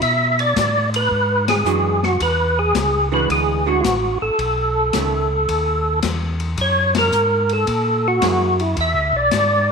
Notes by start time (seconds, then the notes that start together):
0.01 B2 E5, kick, ride
0.39 D5, ride
0.56 A2, kick, snare, hi-hat pedal, ride
0.94 B4, ride
1.11 G#2, kick
1.48 G#4, snare, ride
1.65 F#2 E3 G#3 D4 F#4, hi-hat pedal
2.03 F#4, snare
2.20 E2 B4, kick, ride
2.59 G#4
2.75 C#2, kick, snare, hi-hat pedal, ride
3.12 E3 G#3 D4 F#4 B4
3.29 D2 G#4, kick, ride
3.66 E3 G#3 D4 F#4
3.81 A1 F4 F#4, kick, hi-hat pedal, ride
3.85 snare
4.22 A1 A4
4.38 B1, kick, ride
4.93 C#2 D#3 A3 C#4, kick, snare, hi-hat pedal, ride
5.49 D#2, kick, ride
6.03 E2, kick, snare, hi-hat pedal, ride
6.40 ride
6.57 F#2 C#5, kick, ride
6.95 A#4, snare, ride
7.12 G#2, hi-hat pedal
7.49 A4, ride
7.67 A#2, kick, ride
8.08 F#4
8.21 F#2 F#3 A#3 E4 G#4, kick, snare, hi-hat pedal, ride
8.60 E4, ride
8.77 E2 E5, kick, ride
8.94 D2
9.13 B1 D5
9.31 G#2, kick, snare, hi-hat pedal, ride